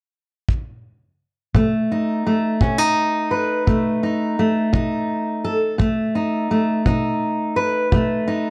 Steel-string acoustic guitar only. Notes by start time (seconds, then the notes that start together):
1.55 B2 A3
1.92 D#4
2.27 A3
2.61 B2 C#4
2.78 D#4
3.31 B4
3.67 B2 A3
4.03 D#4
4.39 A3
4.73 B2 D#4
5.44 A4
5.78 B2 A3
6.15 D#4
6.51 A3
6.86 B2 D#4
7.56 B4
7.92 B2 A3
8.28 D#4